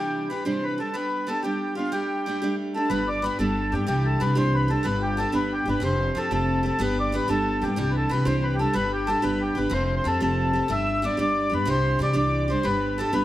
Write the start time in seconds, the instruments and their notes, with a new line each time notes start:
Already playing: steel-string acoustic guitar C3 E3 G3, accordion G4
0.00 steel-string acoustic guitar D4 G4
0.30 steel-string acoustic guitar E3 G3 D4 G4, accordion B4
0.45 steel-string acoustic guitar C3 E3 G3 D4 G4, accordion C5
0.64 accordion B4
0.78 steel-string acoustic guitar G3 D4 G4, accordion A4
0.94 steel-string acoustic guitar G3 B3 D4 G4, accordion B4
1.27 steel-string acoustic guitar G3 B3 D4 G4, accordion A4
1.43 steel-string acoustic guitar G3 B3 D4 G4, accordion G4
1.75 steel-string acoustic guitar B3 D4 G4, accordion F4
1.92 steel-string acoustic guitar G3 A3 D4 G4, accordion G4
2.26 steel-string acoustic guitar G3 A3 D4 G4
2.42 steel-string acoustic guitar G3 A3 D4 G4
2.74 steel-string acoustic guitar A3 D4 G4, accordion A4
2.90 upright bass G1, steel-string acoustic guitar G3 B3 D4 G4, accordion B4
3.08 accordion D5
3.22 steel-string acoustic guitar G3 B3 D4 G4, accordion B4
3.39 upright bass G1, steel-string acoustic guitar G3 B3 D4 G4, accordion A4
3.72 upright bass G2, steel-string acoustic guitar B3 D4 G4, accordion G4
3.87 upright bass C2, steel-string acoustic guitar C3 E3 G3 D4 G4, accordion G4
4.05 accordion A4
4.20 upright bass C3, steel-string acoustic guitar E3 G3 D4 G4, accordion B4
4.35 upright bass C2, steel-string acoustic guitar C3 E3 G3 D4 G4, accordion C5
4.54 accordion B4
4.68 steel-string acoustic guitar G3 D4 G4, accordion A4
4.83 upright bass G1, steel-string acoustic guitar G3 B3 D4 G4, accordion B4
5.02 accordion G4
5.17 steel-string acoustic guitar G3 B3 D4 G4, accordion A4
5.32 upright bass G1, steel-string acoustic guitar G3 B3 D4 G4, accordion B4
5.53 accordion G4
5.66 upright bass G1, steel-string acoustic guitar B3 D4 G4, accordion B4
5.80 upright bass F1, steel-string acoustic guitar F3 A3 C4 G4
5.84 accordion C5
6.15 upright bass F2, steel-string acoustic guitar F3 A3 C4 G4, accordion A4
6.31 upright bass F1, steel-string acoustic guitar F3 A3 C4 G4, accordion A4
6.63 steel-string acoustic guitar A3 C4 G4, accordion A4
6.79 upright bass G1, steel-string acoustic guitar G3 B3 D4 G4, accordion B4
7.00 accordion D5
7.12 steel-string acoustic guitar G3 B3 D4 G4, accordion B4
7.28 upright bass G1, steel-string acoustic guitar G3 B3 D4 G4, accordion A4
7.62 upright bass G2, steel-string acoustic guitar B3 D4 G4, accordion G4
7.76 upright bass C2, steel-string acoustic guitar C3 E3 G3 D4 G4, accordion G4
7.91 accordion B4
7.97 accordion A4
8.09 upright bass C3, steel-string acoustic guitar E3 G3 D4 G4, accordion B4
8.25 upright bass C2, steel-string acoustic guitar C3 E3 G3 D4 G4, accordion C5
8.44 accordion B4
8.55 accordion G4
8.59 steel-string acoustic guitar G3 D4 G4, accordion A4
8.73 upright bass G1, steel-string acoustic guitar G3 B3 D4 G4, accordion B4
8.93 accordion G4
9.07 steel-string acoustic guitar G3 B3 D4 G4, accordion A4
9.22 upright bass G1, steel-string acoustic guitar G3 B3 D4 G4, accordion B4
9.42 accordion G4
9.55 upright bass G1, steel-string acoustic guitar B3 D4 G4, accordion B4
9.70 upright bass F1, steel-string acoustic guitar F3 A3 C4 G4, accordion C5
9.85 accordion C5
9.96 accordion C5
10.04 upright bass F2, steel-string acoustic guitar F3 A3 C4 G4, accordion A4
10.20 upright bass F1, steel-string acoustic guitar F3 A3 C4 G4, accordion A4
10.53 steel-string acoustic guitar A3 C4 G4
10.68 upright bass G1, steel-string acoustic guitar G3 B3 D4 G4, accordion E5
11.02 steel-string acoustic guitar G3 B3 D4 G4, accordion D5
11.17 upright bass G1, steel-string acoustic guitar G3 B3 D4 G4, accordion D5
11.50 upright bass G2, steel-string acoustic guitar B3 D4 G4
11.54 accordion B4
11.65 upright bass C2, steel-string acoustic guitar C3 E3 G3 D4 G4, accordion C5
11.99 upright bass C3, steel-string acoustic guitar E3 G3 D4 G4, accordion D5
12.13 upright bass C2, steel-string acoustic guitar C3 E3 G3 D4 G4, accordion D5
12.48 steel-string acoustic guitar G3 D4 G4, accordion C5
12.63 upright bass G1, steel-string acoustic guitar G3 B3 D4 G4, accordion B4
12.98 steel-string acoustic guitar G3 B3 D4 G4, accordion A4
13.13 upright bass G1, steel-string acoustic guitar G3 B3 D4 G4, accordion B4